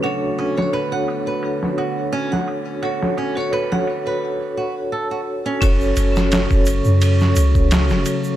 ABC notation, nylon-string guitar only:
X:1
M:4/4
L:1/16
Q:"Swing 16ths" 1/4=86
K:F#m
V:1 name="Nylon-string guitar"
F2 C c B f z B3 F2 C f z2 | F2 C c B f z B3 F z A F z C | z16 |]